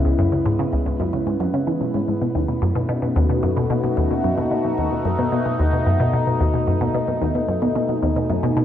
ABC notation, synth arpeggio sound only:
X:1
M:4/4
L:1/16
Q:1/4=111
K:Bmix
V:1 name="Synth arpeggio sound" clef=bass
C,, F,, C, G,, C, C,, C,, F,, C, G,, F,, C, E, B,, G,, G,, | B,, D,, B,, F,, B,, B,, B,, D,, B,, F,, B,, B,, B,, D,, B,, F,, | B,, B,, B,, D,, B,, F,, B,, B,, B,, D,, B,, F,, B,, B,, B,, D,, | B,, F,, B,, B,, B,, D,, B,, F,, B,, B,, B,, D,, B,, F,, B,, B,, |]